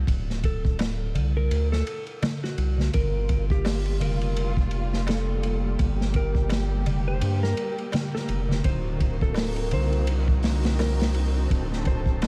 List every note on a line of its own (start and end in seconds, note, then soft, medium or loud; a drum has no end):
0.07 1.16 D1 loud
0.07 kick loud
0.07 ride medium
0.30 snare soft
0.43 0.77 A4 medium
0.43 kick medium
0.43 ride medium
0.65 kick loud
0.79 snare loud
0.79 ride medium
0.79 darbuka tek medium
1.15 1.50 C2 loud
1.15 ride medium
1.15 darbuka dum medium
1.37 1.67 A#4 medium
1.51 1.82 D2 loud
1.51 ride medium
1.72 2.03 A4 medium
1.72 snare medium
1.87 ride medium
2.07 ride soft
2.22 snare loud
2.22 ride medium
2.22 darbuka tek medium
2.22 darbuka dum medium
2.44 2.89 F#4 medium
2.44 snare soft
2.57 2.90 C2 medium
2.57 ride medium
2.78 snare soft
2.78 darbuka dum medium
2.92 4.02 G1 loud
2.92 8.60 G3 medium
2.92 8.60 A#3 medium
2.92 5.76 F4 medium
2.92 3.44 A#4 loud
2.92 kick loud
2.92 ride medium
3.29 kick medium
3.29 ride medium
3.50 3.97 G4 loud
3.50 kick loud
3.65 snare loud
3.65 open hi-hat medium
3.65 darbuka tek medium
3.86 ride soft
4.00 5.76 F1 loud
4.00 4.51 A#4 loud
4.00 ride medium
4.00 darbuka dum medium
4.21 ride soft
4.37 ride medium
4.57 kick medium
4.71 ride medium
4.93 snare soft
5.07 5.58 A4 medium
5.07 snare loud
5.07 ride medium
5.07 darbuka tek medium
5.43 ride medium
5.79 6.87 G1 loud
5.79 8.62 G4 medium
5.79 kick loud
5.79 ride medium
6.01 snare soft
6.14 6.48 A#4 medium
6.14 kick medium
6.14 ride medium
6.35 kick loud
6.50 snare loud
6.50 ride medium
6.50 darbuka tek medium
6.86 7.21 F1 loud
6.86 ride medium
6.86 darbuka dum medium
7.08 7.39 C5 medium
7.21 7.54 G2 loud
7.21 ride loud
7.43 7.74 A#4 loud
7.43 snare soft
7.57 ride medium
7.78 ride soft
7.92 snare loud
7.92 ride medium
7.92 darbuka tek medium
7.92 darbuka dum medium
8.15 8.60 A#4 medium
8.15 snare soft
8.28 8.61 F1 medium
8.28 ride medium
8.49 snare soft
8.49 darbuka dum medium
8.63 9.74 D1 loud
8.63 12.27 D3 medium
8.63 11.47 A#3 medium
8.63 12.27 C4 medium
8.63 12.27 D#4 medium
8.63 12.27 F#4 medium
8.63 9.15 C5 loud
8.63 kick medium
8.63 ride medium
9.00 kick medium
9.00 ride medium
9.21 9.68 A4 medium
9.21 kick medium
9.34 snare loud
9.34 open hi-hat medium
9.34 darbuka tek medium
9.56 ride soft
9.71 11.48 C2 loud
9.71 10.23 C5 medium
9.71 ride medium
9.71 darbuka dum medium
9.93 ride soft
10.07 ride loud
10.28 kick medium
10.43 snare loud
10.43 open hi-hat medium
10.62 snare loud
10.62 open hi-hat medium
10.79 11.29 A#4 medium
10.79 snare medium
10.79 open hi-hat medium
10.79 darbuka tek medium
10.99 snare loud
10.99 open hi-hat medium
11.14 ride medium
11.49 12.27 D1 loud
11.49 12.27 A4 loud
11.49 kick loud
11.49 ride medium
11.73 snare soft
11.85 12.19 C5 medium
11.85 kick medium
11.85 ride medium
12.06 kick medium
12.22 snare loud
12.22 ride medium
12.22 darbuka tek medium